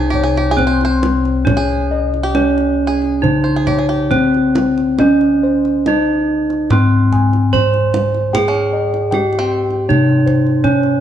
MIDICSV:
0, 0, Header, 1, 6, 480
1, 0, Start_track
1, 0, Tempo, 881057
1, 801, Time_signature, 4, 2, 24, 8
1, 2721, Tempo, 858369
1, 3681, Tempo, 804290
1, 5121, Tempo, 752823
1, 6320, End_track
2, 0, Start_track
2, 0, Title_t, "Kettle gongs"
2, 0, Program_c, 0, 14
2, 0, Note_on_c, 0, 72, 61
2, 82, Note_on_c, 0, 73, 61
2, 110, Note_off_c, 0, 72, 0
2, 320, Note_on_c, 0, 72, 62
2, 350, Note_off_c, 0, 73, 0
2, 589, Note_off_c, 0, 72, 0
2, 801, Note_on_c, 0, 73, 58
2, 1042, Note_on_c, 0, 75, 64
2, 1069, Note_off_c, 0, 73, 0
2, 1282, Note_on_c, 0, 73, 65
2, 1310, Note_off_c, 0, 75, 0
2, 1550, Note_off_c, 0, 73, 0
2, 1761, Note_on_c, 0, 72, 57
2, 2003, Note_on_c, 0, 73, 64
2, 2029, Note_off_c, 0, 72, 0
2, 2240, Note_on_c, 0, 72, 66
2, 2271, Note_off_c, 0, 73, 0
2, 2509, Note_off_c, 0, 72, 0
2, 2720, Note_on_c, 0, 75, 63
2, 2966, Note_on_c, 0, 72, 62
2, 2994, Note_off_c, 0, 75, 0
2, 3209, Note_on_c, 0, 75, 62
2, 3236, Note_off_c, 0, 72, 0
2, 3475, Note_off_c, 0, 75, 0
2, 3685, Note_on_c, 0, 84, 61
2, 3928, Note_on_c, 0, 80, 63
2, 3960, Note_off_c, 0, 84, 0
2, 4169, Note_on_c, 0, 84, 54
2, 4202, Note_off_c, 0, 80, 0
2, 4441, Note_off_c, 0, 84, 0
2, 4649, Note_on_c, 0, 79, 73
2, 4887, Note_on_c, 0, 75, 60
2, 4914, Note_off_c, 0, 79, 0
2, 5114, Note_on_c, 0, 79, 68
2, 5150, Note_off_c, 0, 75, 0
2, 5392, Note_off_c, 0, 79, 0
2, 5607, Note_on_c, 0, 73, 54
2, 5848, Note_on_c, 0, 72, 62
2, 5877, Note_off_c, 0, 73, 0
2, 6089, Note_on_c, 0, 73, 64
2, 6114, Note_off_c, 0, 72, 0
2, 6320, Note_off_c, 0, 73, 0
2, 6320, End_track
3, 0, Start_track
3, 0, Title_t, "Five-string banjo"
3, 0, Program_c, 1, 105
3, 0, Note_on_c, 1, 68, 79
3, 56, Note_off_c, 1, 68, 0
3, 56, Note_on_c, 1, 67, 78
3, 128, Note_on_c, 1, 68, 77
3, 131, Note_off_c, 1, 67, 0
3, 204, Note_off_c, 1, 68, 0
3, 204, Note_on_c, 1, 67, 75
3, 279, Note_on_c, 1, 68, 95
3, 283, Note_off_c, 1, 67, 0
3, 362, Note_off_c, 1, 68, 0
3, 365, Note_on_c, 1, 72, 87
3, 455, Note_off_c, 1, 72, 0
3, 462, Note_on_c, 1, 72, 96
3, 841, Note_off_c, 1, 72, 0
3, 854, Note_on_c, 1, 68, 93
3, 1217, Note_on_c, 1, 67, 73
3, 1229, Note_off_c, 1, 68, 0
3, 1565, Note_on_c, 1, 68, 81
3, 1576, Note_off_c, 1, 67, 0
3, 1871, Note_off_c, 1, 68, 0
3, 1873, Note_on_c, 1, 72, 55
3, 1936, Note_off_c, 1, 72, 0
3, 1941, Note_on_c, 1, 68, 73
3, 1999, Note_on_c, 1, 67, 69
3, 2001, Note_off_c, 1, 68, 0
3, 2059, Note_off_c, 1, 67, 0
3, 2062, Note_on_c, 1, 68, 67
3, 2116, Note_off_c, 1, 68, 0
3, 2119, Note_on_c, 1, 67, 74
3, 3056, Note_off_c, 1, 67, 0
3, 4737, Note_on_c, 1, 61, 78
3, 5286, Note_off_c, 1, 61, 0
3, 5288, Note_on_c, 1, 60, 92
3, 6297, Note_off_c, 1, 60, 0
3, 6320, End_track
4, 0, Start_track
4, 0, Title_t, "Bronze metallophone"
4, 0, Program_c, 2, 11
4, 0, Note_on_c, 2, 63, 73
4, 309, Note_on_c, 2, 60, 85
4, 316, Note_off_c, 2, 63, 0
4, 790, Note_on_c, 2, 61, 76
4, 795, Note_off_c, 2, 60, 0
4, 1273, Note_off_c, 2, 61, 0
4, 1279, Note_on_c, 2, 61, 84
4, 1754, Note_on_c, 2, 63, 80
4, 1761, Note_off_c, 2, 61, 0
4, 2238, Note_off_c, 2, 63, 0
4, 2238, Note_on_c, 2, 60, 99
4, 2721, Note_off_c, 2, 60, 0
4, 2724, Note_on_c, 2, 61, 75
4, 3210, Note_off_c, 2, 61, 0
4, 3213, Note_on_c, 2, 63, 86
4, 3685, Note_off_c, 2, 63, 0
4, 3685, Note_on_c, 2, 60, 82
4, 4169, Note_on_c, 2, 72, 91
4, 4176, Note_off_c, 2, 60, 0
4, 4652, Note_off_c, 2, 72, 0
4, 4659, Note_on_c, 2, 68, 81
4, 5126, Note_off_c, 2, 68, 0
4, 5130, Note_on_c, 2, 67, 74
4, 5610, Note_on_c, 2, 63, 90
4, 5615, Note_off_c, 2, 67, 0
4, 6087, Note_on_c, 2, 61, 85
4, 6088, Note_off_c, 2, 63, 0
4, 6320, Note_off_c, 2, 61, 0
4, 6320, End_track
5, 0, Start_track
5, 0, Title_t, "Kettle gongs"
5, 0, Program_c, 3, 14
5, 0, Note_on_c, 3, 36, 103
5, 0, Note_on_c, 3, 60, 66
5, 298, Note_off_c, 3, 60, 0
5, 321, Note_on_c, 3, 61, 39
5, 364, Note_off_c, 3, 61, 0
5, 802, Note_on_c, 3, 61, 75
5, 1274, Note_off_c, 3, 61, 0
5, 1281, Note_on_c, 3, 61, 42
5, 1324, Note_off_c, 3, 61, 0
5, 1753, Note_off_c, 3, 36, 0
5, 1760, Note_on_c, 3, 49, 62
5, 2243, Note_on_c, 3, 61, 47
5, 2286, Note_off_c, 3, 61, 0
5, 2723, Note_on_c, 3, 61, 77
5, 3186, Note_off_c, 3, 49, 0
5, 3202, Note_off_c, 3, 61, 0
5, 3677, Note_on_c, 3, 44, 71
5, 4176, Note_on_c, 3, 61, 47
5, 4223, Note_off_c, 3, 61, 0
5, 4651, Note_on_c, 3, 68, 74
5, 5096, Note_off_c, 3, 44, 0
5, 5120, Note_on_c, 3, 61, 48
5, 5171, Note_off_c, 3, 61, 0
5, 5611, Note_on_c, 3, 48, 60
5, 6061, Note_off_c, 3, 68, 0
5, 6089, Note_on_c, 3, 61, 45
5, 6140, Note_off_c, 3, 61, 0
5, 6320, Note_off_c, 3, 48, 0
5, 6320, End_track
6, 0, Start_track
6, 0, Title_t, "Kendang"
6, 75, Note_on_c, 9, 64, 45
6, 129, Note_off_c, 9, 64, 0
6, 198, Note_on_c, 9, 62, 21
6, 253, Note_off_c, 9, 62, 0
6, 319, Note_on_c, 9, 64, 58
6, 373, Note_off_c, 9, 64, 0
6, 442, Note_on_c, 9, 62, 22
6, 496, Note_off_c, 9, 62, 0
6, 561, Note_on_c, 9, 63, 50
6, 615, Note_off_c, 9, 63, 0
6, 682, Note_on_c, 9, 62, 22
6, 737, Note_off_c, 9, 62, 0
6, 800, Note_on_c, 9, 63, 51
6, 800, Note_on_c, 9, 64, 80
6, 855, Note_off_c, 9, 63, 0
6, 855, Note_off_c, 9, 64, 0
6, 921, Note_on_c, 9, 62, 19
6, 976, Note_off_c, 9, 62, 0
6, 1165, Note_on_c, 9, 62, 20
6, 1219, Note_off_c, 9, 62, 0
6, 1279, Note_on_c, 9, 63, 58
6, 1334, Note_off_c, 9, 63, 0
6, 1404, Note_on_c, 9, 62, 22
6, 1458, Note_off_c, 9, 62, 0
6, 1645, Note_on_c, 9, 62, 19
6, 1700, Note_off_c, 9, 62, 0
6, 1765, Note_on_c, 9, 64, 65
6, 1819, Note_off_c, 9, 64, 0
6, 1884, Note_on_c, 9, 62, 20
6, 1938, Note_off_c, 9, 62, 0
6, 2001, Note_on_c, 9, 64, 52
6, 2055, Note_off_c, 9, 64, 0
6, 2241, Note_on_c, 9, 64, 66
6, 2296, Note_off_c, 9, 64, 0
6, 2366, Note_on_c, 9, 62, 20
6, 2421, Note_off_c, 9, 62, 0
6, 2481, Note_on_c, 9, 63, 64
6, 2535, Note_off_c, 9, 63, 0
6, 2602, Note_on_c, 9, 62, 26
6, 2657, Note_off_c, 9, 62, 0
6, 2716, Note_on_c, 9, 63, 52
6, 2716, Note_on_c, 9, 64, 69
6, 2772, Note_off_c, 9, 63, 0
6, 2772, Note_off_c, 9, 64, 0
6, 2841, Note_on_c, 9, 62, 22
6, 2897, Note_off_c, 9, 62, 0
6, 3087, Note_on_c, 9, 62, 21
6, 3143, Note_off_c, 9, 62, 0
6, 3205, Note_on_c, 9, 63, 56
6, 3261, Note_off_c, 9, 63, 0
6, 3563, Note_on_c, 9, 62, 20
6, 3619, Note_off_c, 9, 62, 0
6, 3677, Note_on_c, 9, 63, 68
6, 3677, Note_on_c, 9, 64, 61
6, 3736, Note_off_c, 9, 63, 0
6, 3736, Note_off_c, 9, 64, 0
6, 3928, Note_on_c, 9, 64, 57
6, 3987, Note_off_c, 9, 64, 0
6, 4051, Note_on_c, 9, 62, 24
6, 4111, Note_off_c, 9, 62, 0
6, 4177, Note_on_c, 9, 64, 67
6, 4236, Note_off_c, 9, 64, 0
6, 4294, Note_on_c, 9, 62, 23
6, 4353, Note_off_c, 9, 62, 0
6, 4414, Note_on_c, 9, 63, 57
6, 4474, Note_off_c, 9, 63, 0
6, 4536, Note_on_c, 9, 62, 23
6, 4596, Note_off_c, 9, 62, 0
6, 4657, Note_on_c, 9, 63, 63
6, 4657, Note_on_c, 9, 64, 81
6, 4716, Note_off_c, 9, 63, 0
6, 4716, Note_off_c, 9, 64, 0
6, 4775, Note_on_c, 9, 62, 18
6, 4834, Note_off_c, 9, 62, 0
6, 5010, Note_on_c, 9, 62, 23
6, 5070, Note_off_c, 9, 62, 0
6, 5121, Note_on_c, 9, 63, 61
6, 5184, Note_off_c, 9, 63, 0
6, 5249, Note_on_c, 9, 62, 24
6, 5313, Note_off_c, 9, 62, 0
6, 5492, Note_on_c, 9, 62, 20
6, 5556, Note_off_c, 9, 62, 0
6, 5617, Note_on_c, 9, 64, 60
6, 5681, Note_off_c, 9, 64, 0
6, 5735, Note_on_c, 9, 62, 17
6, 5799, Note_off_c, 9, 62, 0
6, 5855, Note_on_c, 9, 64, 54
6, 5919, Note_off_c, 9, 64, 0
6, 5976, Note_on_c, 9, 62, 19
6, 6040, Note_off_c, 9, 62, 0
6, 6089, Note_on_c, 9, 64, 60
6, 6153, Note_off_c, 9, 64, 0
6, 6211, Note_on_c, 9, 62, 23
6, 6274, Note_off_c, 9, 62, 0
6, 6320, End_track
0, 0, End_of_file